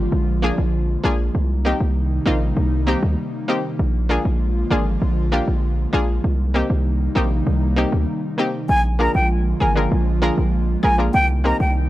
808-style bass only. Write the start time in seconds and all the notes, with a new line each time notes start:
0.12 A#1
0.58 A#1
1.04 A#1
1.35 C2
1.80 C2
2.26 A#1
2.57 C2
3.03 D2
3.79 A#1
4.25 A#1
4.71 G#1
5.02 A#1
5.48 A#1
5.93 A#1
6.24 C2
6.70 C2
7.16 A#1
7.47 C2
7.92 D2
8.69 A#1
9.15 A#1
9.61 G#1
9.92 A#1
10.38 A#1
10.84 A#1
11.14 C2
11.60 C2